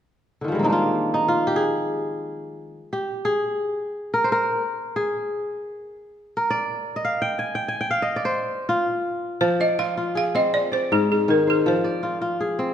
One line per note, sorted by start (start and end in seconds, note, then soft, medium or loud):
0.41 0.56 D3 soft
0.41 2.78 D#3 soft
0.48 2.82 F3 soft
0.48 2.86 G3 soft
0.55 2.89 G#3 soft
0.59 2.52 A#3 soft
0.59 2.43 C4 soft
0.64 1.20 D4 soft
0.64 0.69 D#4 medium
0.70 1.14 D#4 soft
0.70 1.28 F4 medium
1.14 2.76 D#4 medium
1.28 2.80 F4 medium
1.47 1.62 G4 medium
1.56 2.92 G#4 medium
2.93 3.31 G4 medium
3.25 4.61 G#4 medium
4.14 4.32 A#4 medium
4.24 5.43 C5 medium
4.32 5.59 A#4 medium
4.96 6.32 G#4 medium
6.37 7.64 A#4 medium
6.50 7.02 D5 medium
6.96 8.02 D#5 medium
7.05 7.90 F5 medium
7.22 7.45 G5 medium
7.39 7.61 G#5 medium
7.55 7.74 G5 medium
7.68 7.87 G#5 medium
7.81 8.74 G5 medium
7.91 8.90 F5 medium
8.02 8.22 D#5 medium
8.16 9.27 D5 medium
8.25 9.44 C5 medium
8.69 9.78 F4 medium
9.41 10.59 F3 medium
9.41 9.60 C5 medium
9.60 10.71 D5 medium
9.60 9.69 D#5 medium
9.79 9.97 F4 medium
9.79 10.16 F5 medium
9.97 11.49 F4 medium
10.15 11.52 G#4 medium
10.15 10.36 F5 medium
10.35 12.15 C4 medium
10.35 10.54 D#5 medium
10.54 10.73 D5 medium
10.72 10.81 C5 medium
10.72 11.34 D5 medium
10.92 11.71 G#2 medium
10.92 11.11 G#4 medium
11.12 11.30 G#4 medium
11.28 11.71 D#3 medium
11.28 11.47 A#4 medium
11.47 11.68 G#4 medium
11.47 12.66 C5 medium
11.66 12.74 F3 medium
11.66 12.74 C5 medium
11.84 12.74 D5 medium
12.03 12.21 F4 medium
12.22 12.74 F4 medium
12.41 12.74 G#4 medium
12.59 12.74 C4 medium